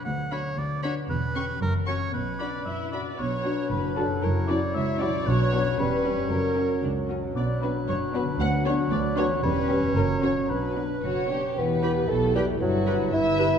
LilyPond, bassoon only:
\new Staff \with { instrumentName = "Bassoon" } { \clef bass \time 2/4 \key b \minor \tempo 4 = 115 r2 | r2 | r2 | fis2~ |
fis2 | fis4 g4 | fis2~ | fis2 |
fis2 | g8 r8 fis4~ | fis4 cis'4 | \key e \minor b4 a8 g8 |
fis4 e'4 | }